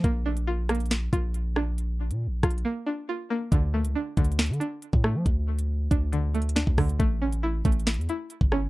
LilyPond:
<<
  \new Staff \with { instrumentName = "Synth pluck" } { \time 4/4 \key d \minor \tempo 4 = 138 bes8 d'8 f'8 bes4 f'4 d'8~ | d'4. f'8 bes8 d'8 f'8 bes8 | d8 a8 d'8 d4 d'4 a8~ | a4. d'8 d8 a8 d'8 d8 |
a8 cis'8 e'8 a4 e'4 cis'8 | }
  \new Staff \with { instrumentName = "808-style bass" } { \clef bass \time 4/4 \key d \minor bes,,2~ bes,,8 bes,,4.~ | bes,,8. bes,16. bes,,16. bes,,8 r2 | d,8. cis,16 r8 d,8. d16 r8. a,8 f16 | d,4. d,4.~ d,16 d,16 d,8 |
a,,4. a,,8. e,16 r8. g,,8. | }
  \new DrumStaff \with { instrumentName = "Drums" } \drummode { \time 4/4 <hh bd>8. hh16 r8 <hh ss>32 hh32 hh32 hh32 <hh sn>8 <hh bd>8 hh8 ss8 | hh8. hh16 \tuplet 3/2 { r16 r16 r16 <hh bd ss>16 hh16 hh16 } r4 r4 | <hh bd>8. hh16 \tuplet 3/2 { r16 r16 r16 <hh bd>16 hh16 hh16 <hh sn>16 hh16 hh16 hh16 r16 r16 } hh16 bd16 ss8 | <hh bd>8. hh16 r8 <hh bd>8 \tuplet 3/2 { hh16 r16 r16 hh16 hh16 hh16 } sn16 bd16 <hho bd ss>16 hh16 |
<hh bd>8. hh16 \tuplet 3/2 { r16 r16 r16 <hh bd>16 hh16 hh16 <hh sn>16 hh16 hh16 hh16 r16 r16 } hh16 bd16 ss8 | }
>>